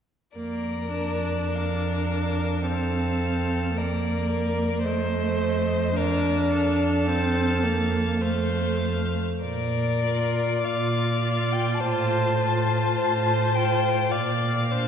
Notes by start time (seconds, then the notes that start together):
0.36 F2 A#3 A#4 D5
0.97 D4
1.53 A#4 F5
2.67 C4 A4 F5
3.77 A#3 A#4 D5
4.31 A#4
4.85 F2 A3 C5 D#5
5.96 D4 A#4 F5
6.51 A4
7.08 C4 F5
7.64 A#3
8.21 A3 C5 F5
9.44 A#2 A#4 D5
10.05 F4
10.64 A#2 D5 F5
11.23 F4
11.52 G5
11.80 A2 F4 C5 A5
12.41 F4
12.96 A2 C5
13.55 F4 G5
14.11 A#2 D5 F5
14.72 D4 C5